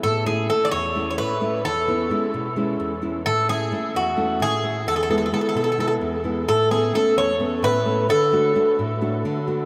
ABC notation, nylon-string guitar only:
X:1
M:7/8
L:1/8
Q:1/4=130
K:A
V:1 name="Nylon-string guitar"
A,, [A,CE] [A,CE] E,, [A,CE] A,, [A,CE] | E,, [B,CE] [G,CE] B,, [G,CE] E,, [G,CE] | A,, [A,CE] [A,CE] E,, [A,CE] A,, [A,CE] | E,, [G,B,E] [G,B,E] B,, [G,B,E] E,, [G,B,E] |
A,, [A,B,C] [A,B,C] E,, [A,B,C] A,, [A,B,C] | D, [A,DF] [A,DF] A,, [A,DF] D, [A,DF] |]